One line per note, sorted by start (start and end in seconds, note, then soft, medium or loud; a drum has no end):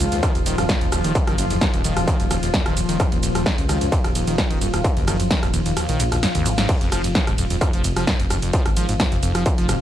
0.00 6.68 F3 medium
0.00 6.68 F4 medium
0.12 0.20 C#2 loud
0.12 0.21 D#2 medium
0.12 closed hi-hat medium
0.12 ride medium
0.12 shaker soft
0.23 0.33 D#3 medium
0.23 kick loud
0.23 cross-stick medium
0.23 closed hi-hat medium
0.23 ride medium
0.23 shaker soft
0.35 0.43 D#1 medium
0.35 0.39 D#2 medium
0.35 closed hi-hat soft
0.35 ride medium
0.35 shaker soft
0.46 0.55 D#1 loud
0.46 0.56 D#3 medium
0.46 open hi-hat loud
0.46 ride medium
0.46 shaker medium
0.58 0.66 D#1 medium
0.58 0.64 F#2 medium
0.58 cross-stick medium
0.58 closed hi-hat medium
0.58 ride medium
0.58 shaker soft
0.69 0.76 D#2 medium
0.69 kick loud
0.69 snare loud
0.69 closed hi-hat medium
0.69 ride medium
0.69 shaker soft
0.81 0.89 D#1 medium
0.81 0.87 D#2 medium
0.81 closed hi-hat soft
0.81 ride medium
0.92 1.01 D#1 loud
0.92 1.02 D#2 medium
0.92 cross-stick medium
0.92 open hi-hat medium
0.92 ride medium
0.92 shaker medium
1.04 1.12 D#1 medium
1.04 1.13 D#3 medium
1.04 closed hi-hat medium
1.04 ride medium
1.04 shaker soft
1.15 1.19 D#2 medium
1.15 kick loud
1.15 closed hi-hat medium
1.15 ride medium
1.15 shaker soft
1.27 1.35 F#1 medium
1.27 1.36 D#3 medium
1.27 cross-stick medium
1.27 closed hi-hat medium
1.27 ride medium
1.38 1.47 F#1 loud
1.38 1.45 F#2 medium
1.38 open hi-hat loud
1.38 ride medium
1.38 shaker medium
1.50 1.58 F#1 medium
1.50 1.57 D#2 medium
1.50 closed hi-hat medium
1.50 ride medium
1.50 shaker soft
1.61 1.68 D#2 medium
1.61 kick loud
1.61 cross-stick medium
1.61 snare loud
1.61 closed hi-hat medium
1.61 ride medium
1.61 shaker soft
1.74 1.81 D#1 medium
1.74 1.83 D#2 medium
1.74 closed hi-hat soft
1.74 ride medium
1.74 shaker soft
1.84 1.93 D#1 loud
1.84 1.95 D#3 medium
1.84 open hi-hat medium
1.84 ride medium
1.84 shaker medium
1.97 2.05 D#1 medium
1.97 2.00 D#2 medium
1.97 cross-stick medium
1.97 closed hi-hat medium
1.97 ride medium
1.97 shaker soft
2.08 2.18 D#3 medium
2.08 kick loud
2.08 closed hi-hat medium
2.08 ride medium
2.08 shaker soft
2.20 2.28 D#1 medium
2.20 2.26 F#2 medium
2.20 closed hi-hat soft
2.20 ride medium
2.20 shaker soft
2.31 2.39 D#1 loud
2.31 2.37 D#2 medium
2.31 cross-stick medium
2.31 open hi-hat loud
2.31 ride medium
2.31 shaker medium
2.43 2.51 D#1 medium
2.43 2.49 D#2 medium
2.43 closed hi-hat soft
2.43 ride medium
2.43 shaker soft
2.54 2.64 D#2 medium
2.54 kick loud
2.54 snare loud
2.54 closed hi-hat medium
2.54 ride medium
2.54 shaker soft
2.66 2.74 D#1 medium
2.66 2.75 D#3 medium
2.66 cross-stick medium
2.66 closed hi-hat soft
2.66 ride medium
2.77 2.86 D#1 loud
2.77 2.81 D#2 medium
2.77 open hi-hat loud
2.77 ride medium
2.77 shaker medium
2.89 2.97 D#1 medium
2.89 2.98 D#3 medium
2.89 closed hi-hat medium
2.89 ride medium
2.89 shaker soft
3.00 3.06 F#2 medium
3.00 kick loud
3.00 cross-stick medium
3.00 closed hi-hat medium
3.00 ride medium
3.00 shaker soft
3.12 3.20 D#1 medium
3.12 3.18 D#2 medium
3.12 closed hi-hat medium
3.12 ride medium
3.23 3.32 D#1 loud
3.23 3.30 D#2 medium
3.23 open hi-hat loud
3.23 ride medium
3.23 shaker medium
3.35 3.43 D#1 medium
3.35 3.44 D#2 medium
3.35 cross-stick medium
3.35 closed hi-hat medium
3.35 ride medium
3.35 shaker soft
3.46 3.56 D#3 medium
3.46 kick loud
3.46 snare loud
3.46 closed hi-hat medium
3.46 ride medium
3.46 shaker soft
3.58 3.66 C#2 medium
3.58 3.62 D#2 medium
3.58 closed hi-hat medium
3.58 ride medium
3.58 shaker soft
3.69 3.78 C#2 loud
3.69 3.79 D#3 medium
3.69 cross-stick medium
3.69 open hi-hat medium
3.69 ride medium
3.69 shaker medium
3.81 3.89 C#2 loud
3.81 3.87 F#2 medium
3.81 closed hi-hat medium
3.81 ride medium
3.81 shaker soft
3.92 3.99 D#2 medium
3.92 kick loud
3.92 closed hi-hat medium
3.92 ride medium
3.92 shaker soft
4.04 4.12 D#1 medium
4.04 4.10 D#2 medium
4.04 cross-stick medium
4.04 closed hi-hat soft
4.04 ride medium
4.04 shaker soft
4.15 4.24 D#1 loud
4.15 4.25 D#2 medium
4.15 open hi-hat loud
4.15 ride medium
4.15 shaker medium
4.27 4.35 D#1 medium
4.27 4.36 D#3 medium
4.27 closed hi-hat medium
4.27 ride medium
4.27 shaker soft
4.38 4.42 D#2 medium
4.38 kick loud
4.38 cross-stick medium
4.38 snare loud
4.38 closed hi-hat medium
4.38 ride medium
4.38 shaker soft
4.50 4.58 D#1 medium
4.50 4.59 D#3 medium
4.50 closed hi-hat medium
4.50 ride medium
4.61 4.70 D#1 loud
4.61 4.68 F#2 medium
4.61 open hi-hat medium
4.61 ride medium
4.61 shaker medium
4.73 4.81 D#1 loud
4.73 4.79 D#2 medium
4.73 cross-stick medium
4.73 closed hi-hat soft
4.73 ride medium
4.73 shaker soft
4.84 4.91 D#2 medium
4.84 kick loud
4.84 closed hi-hat medium
4.84 ride medium
4.84 shaker soft
4.96 5.05 F#1 medium
4.96 5.06 D#2 medium
4.96 closed hi-hat medium
4.96 ride medium
5.07 5.16 F#1 loud
5.07 5.17 D#3 medium
5.07 cross-stick medium
5.07 open hi-hat loud
5.07 ride medium
5.07 shaker medium
5.19 5.28 F#1 medium
5.19 5.23 D#2 medium
5.19 closed hi-hat medium
5.19 ride medium
5.19 shaker soft
5.30 5.41 D#3 medium
5.30 kick loud
5.30 snare loud
5.30 closed hi-hat medium
5.30 ride medium
5.30 shaker soft
5.43 5.51 D#1 medium
5.43 5.49 F#2 medium
5.43 cross-stick medium
5.43 closed hi-hat medium
5.43 ride medium
5.43 shaker soft
5.54 5.62 D#1 loud
5.54 5.60 D#2 medium
5.54 open hi-hat medium
5.54 ride medium
5.54 shaker medium
5.66 5.74 D#1 medium
5.66 5.72 D#2 medium
5.66 closed hi-hat medium
5.66 ride medium
5.66 shaker soft
5.77 5.87 D#2 medium
5.77 cross-stick medium
5.77 closed hi-hat medium
5.77 ride medium
5.77 shaker soft
5.89 5.97 A#1 medium
5.89 6.01 D#3 medium
5.89 closed hi-hat medium
5.89 ride medium
5.89 shaker soft
6.00 6.09 A#1 loud
6.00 6.04 D#2 loud
6.00 open hi-hat loud
6.00 ride medium
6.00 shaker medium
6.12 6.20 A#1 medium
6.12 6.18 D#2 medium
6.12 cross-stick medium
6.12 closed hi-hat medium
6.12 ride medium
6.12 shaker soft
6.23 6.27 F#2 loud
6.23 snare loud
6.23 closed hi-hat medium
6.23 ride medium
6.23 shaker soft
6.35 6.43 G#1 medium
6.35 6.48 D#2 loud
6.35 closed hi-hat medium
6.35 ride medium
6.35 shaker soft
6.46 6.55 G#1 loud
6.46 6.53 F#3 loud
6.46 open hi-hat medium
6.46 ride medium
6.46 shaker medium
6.58 6.66 G#1 medium
6.58 6.67 G#2 medium
6.58 snare medium
6.58 closed hi-hat medium
6.58 ride medium
6.58 shaker soft
6.69 6.76 F2 medium
6.69 9.81 F3 medium
6.69 9.81 F4 medium
6.69 kick loud
6.69 closed hi-hat medium
6.69 crash medium
6.69 ride medium
6.69 shaker soft
6.81 6.89 F1 medium
6.81 6.90 F2 medium
6.81 closed hi-hat medium
6.81 ride medium
6.92 7.01 F1 loud
6.92 7.02 F3 medium
6.92 cross-stick medium
6.92 open hi-hat loud
6.92 ride medium
6.92 shaker medium
7.04 7.12 F1 loud
7.04 7.08 F2 medium
7.04 closed hi-hat medium
7.04 ride medium
7.04 shaker soft
7.15 7.25 F3 medium
7.15 kick loud
7.15 snare loud
7.15 closed hi-hat medium
7.15 ride medium
7.15 shaker soft
7.27 7.35 D#1 medium
7.27 7.33 G#2 medium
7.27 cross-stick medium
7.27 closed hi-hat medium
7.27 ride medium
7.27 shaker soft
7.38 7.47 D#1 loud
7.38 7.45 F2 medium
7.38 open hi-hat medium
7.38 ride medium
7.38 shaker medium
7.50 7.58 D#1 medium
7.50 7.56 F2 medium
7.50 closed hi-hat medium
7.50 ride medium
7.50 shaker soft
7.61 7.71 F2 medium
7.61 kick loud
7.61 cross-stick medium
7.61 closed hi-hat medium
7.61 ride medium
7.61 shaker soft
7.73 7.81 F1 medium
7.73 7.82 F3 medium
7.73 closed hi-hat medium
7.73 ride medium
7.73 shaker soft
7.84 7.93 F1 loud
7.84 7.88 F2 medium
7.84 open hi-hat loud
7.84 ride medium
7.84 shaker medium
7.96 8.04 F1 medium
7.96 8.06 F3 medium
7.96 cross-stick medium
7.96 closed hi-hat medium
7.96 ride medium
7.96 shaker soft
8.07 8.14 G#2 medium
8.07 kick loud
8.07 snare loud
8.07 closed hi-hat medium
8.07 ride medium
8.07 shaker soft
8.19 8.27 F1 medium
8.19 8.26 F2 medium
8.19 closed hi-hat medium
8.19 ride medium
8.30 8.39 F1 loud
8.30 8.37 F2 medium
8.30 cross-stick medium
8.30 open hi-hat medium
8.30 ride medium
8.30 shaker medium
8.42 8.51 F1 medium
8.42 8.52 F2 medium
8.42 closed hi-hat medium
8.42 ride medium
8.42 shaker soft
8.53 8.64 F3 medium
8.53 kick loud
8.53 closed hi-hat medium
8.53 ride medium
8.53 shaker soft
8.66 8.74 G#1 medium
8.66 8.69 F2 medium
8.66 cross-stick medium
8.66 closed hi-hat medium
8.66 ride medium
8.77 8.85 G#1 loud
8.77 8.87 F3 medium
8.77 open hi-hat loud
8.77 ride medium
8.77 shaker medium
8.89 8.97 G#1 medium
8.89 8.95 G#2 medium
8.89 closed hi-hat medium
8.89 ride medium
8.89 shaker soft
9.00 9.06 F2 medium
9.00 kick loud
9.00 cross-stick medium
9.00 snare loud
9.00 closed hi-hat medium
9.00 ride medium
9.00 shaker soft
9.12 9.20 F1 medium
9.12 9.18 F2 medium
9.12 closed hi-hat medium
9.12 ride medium
9.12 shaker soft
9.23 9.32 F1 medium
9.23 9.33 F2 medium
9.23 open hi-hat medium
9.23 ride medium
9.23 shaker medium
9.35 9.43 F1 medium
9.35 9.44 F3 medium
9.35 cross-stick medium
9.35 closed hi-hat medium
9.35 ride medium
9.35 shaker soft
9.46 9.50 F2 medium
9.46 kick loud
9.46 closed hi-hat medium
9.46 ride medium
9.46 shaker soft
9.58 9.66 F1 medium
9.58 9.67 F3 medium
9.58 closed hi-hat medium
9.58 ride medium
9.58 shaker soft
9.69 9.78 F1 loud
9.69 9.76 G#2 medium
9.69 cross-stick medium
9.69 open hi-hat loud
9.69 ride medium
9.69 shaker medium